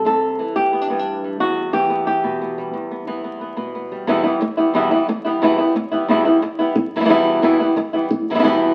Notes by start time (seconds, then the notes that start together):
0.05 C3 A4
0.39 E3
0.56 G4
0.73 B3
0.81 D4
0.90 G2 B3
0.99 D4
1.24 G3
1.40 E2 F#4
1.73 E3 G4
1.90 B3
2.07 G4
2.24 B2
2.41 B3
2.58 G3
2.73 E2
2.91 B3
3.07 E3 B3
3.24 B3
3.41 B3
3.57 B2 B3
3.75 B3
3.92 G3
4.07 E2 B2 E3 G3 B3 E4
4.23 E3 G3 B3 E4
4.41 muted nylon-string guitar stroke
4.57 E3 G3 B3 E4
4.74 E2 B2 E3 G3 B3 E4
4.91 E3 G3 B3 E4
5.08 muted nylon-string guitar stroke
5.25 E3 G3 B3 E4
5.42 E2 B2 E3 G3 B3 E4
5.58 E3 G3 B3 E4
5.76 muted nylon-string guitar stroke
5.92 E3 G3 B3 E4
6.08 E2 B2 E3 G3 B3 E4
6.25 E3 G3 B3 E4
6.42 muted nylon-string guitar stroke
6.59 E3 G3 B3 E4
6.76 muted nylon-string guitar stroke
6.96 B2 E3 G3 B3 E4
7.00 B2 E3 G3 B3 E4
7.04 B2 E3 G3 B3 E4
7.09 E2 B2 E3 G3 B3 E4
7.42 E2 B2 E3 G3 B3 E4
7.60 E3 G3 B3 E4
7.76 muted nylon-string guitar stroke
7.93 E3 G3 B3 E4
8.11 muted nylon-string guitar stroke
8.30 B2 E3 G3 B3 E4
8.34 B2 E3 G3 B3 E4
8.39 B2 E3 G3 B3 E4
8.43 E2 B2 E3 G3 B3 E4